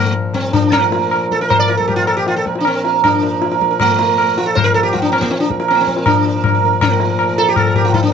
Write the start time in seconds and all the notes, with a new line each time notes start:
Already playing: A#2 F3 A3
0.34 C4, tabla tin, tabla ge
0.53 D4, tabla tin, tabla ge
0.72 A#2 F3 A3 A#4, tabla na, tabla ge
0.82 A#4
0.92 A#4, tabla te
1.02 A#4
1.11 A#4, tabla na
1.31 A4, tabla ke
1.41 A#4, tabla te
1.50 C5, tabla na, tabla ge
1.60 D5
1.68 A#4, tabla te
1.77 A4, tabla ge
1.88 G4, tabla tin, tabla ge
1.96 F4
2.07 A4, tabla na
2.17 G4
2.27 F4, tabla te
2.36 A4, tabla te
2.46 A#4, tabla ke
2.55 tabla te
2.60 D4
2.65 C4, tabla na
2.75 A#4
2.85 A#4, tabla te
3.04 D4, tabla na, tabla ge
3.22 A#4, tabla te
3.31 A#4
3.41 A#4, tabla te
3.51 A#4, tabla te
3.61 A#4, tabla ke
3.70 A#4, tabla te
3.80 A3, tabla na, tabla ge
3.91 A#4
3.99 A#4, tabla te
4.09 A#4
4.18 A#4, tabla na
4.28 A#4
4.37 F4, tabla te
4.46 A4
4.55 C5, tabla na, tabla ge
4.64 A#4
4.74 A4, tabla ge
4.83 G4
4.93 F4, tabla tin, tabla ge
5.02 D4
5.12 C4, tabla na
5.21 A#3, tabla ke
5.31 C4, tabla te
5.40 D4, tabla te
5.50 A#4, tabla ke
5.60 A#4, tabla te
5.68 C4, tabla na
5.75 A#3
5.81 C4
5.87 tabla ke
5.97 A#4, tabla te
6.06 D4, tabla na, tabla ge
6.25 A#4, tabla te
6.36 A#4
6.44 tabla na, tabla ge
6.55 A#4
6.63 A#4, tabla ge
6.73 A#4
6.81 A#2 F3 A3, tabla na, tabla ge
6.92 A#4
7.00 A#4, tabla te
7.10 A#4
7.19 A#4, tabla na
7.29 A#4
7.38 A4, tabla te
7.48 G4
7.56 A4, tabla na, tabla ge
7.67 A#4
7.75 G4, tabla ge
7.85 F4
7.93 E4, tabla tin, tabla ge
8.03 D4